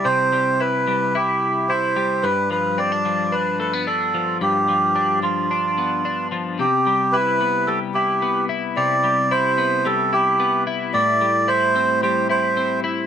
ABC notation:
X:1
M:4/4
L:1/16
Q:1/4=110
K:C
V:1 name="Melodica"
c4 B4 G4 c4 | B2 B2 d4 B2 B2 A4 | G6 F8 z2 | G4 B4 A2 G4 z2 |
d4 c4 A2 G4 z2 | d4 c4 c2 c4 z2 |]
V:2 name="Clean electric guitar"
[C,G,E]2 G,2 E2 G,2 E4 E2 G,2 | G,,2 F,2 C D F,2 D2 A, B, D2 F,2 | G,,2 F,2 D2 F,2 D2 B,2 D2 F,2 | C,2 G,2 E2 B,2 G,2 E2 B,2 E2 |
C,2 G,2 E2 B,2 G,2 E2 B,2 E2 | A,,2 G,2 E2 C2 G,2 E2 C2 E2 |]